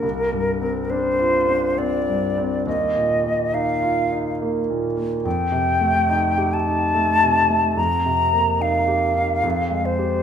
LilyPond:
<<
  \new Staff \with { instrumentName = "Flute" } { \time 3/4 \key ees \major \tempo 4 = 70 bes'4 c''4 d''4 | ees''4 f''4 r4 | g''4. a''4. | bes''4 f''4. c''8 | }
  \new Staff \with { instrumentName = "Grand piano" } { \time 3/4 \key ees \major \tuplet 3/2 { c,8 g,8 c'8 d'8 f'8 d'8 c'8 g,8 c'8 } | \tuplet 3/2 { ees,8 bes,8 bes8 ees'8 f'8 ees'8 bes8 bes,8 bes8 } | \tuplet 3/2 { f,8 c8 a8 ees'8 g'8 ees'8 a8 c8 a8 } | \tuplet 3/2 { f,8 c8 bes8 ees'8 g'8 ees'8 f,8 aes8 <g' c''>8 } | }
>>